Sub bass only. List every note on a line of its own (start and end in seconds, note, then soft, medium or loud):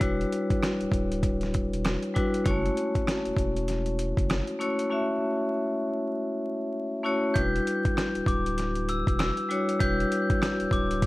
0.01 0.25 E1 loud
0.81 0.86 D1 soft
0.92 1.68 D1 medium
1.73 1.96 E1 medium
2.46 2.70 F#1 loud
3.26 3.31 E1 medium
3.37 4.13 E1 medium
4.17 4.41 F#1 medium
7.36 7.60 E1 loud
8.16 8.21 D1 soft
8.27 9.03 D1 loud
9.07 9.31 E1 loud
9.81 10.04 E1 loud
10.61 10.66 D1 soft
10.71 11.06 D1 medium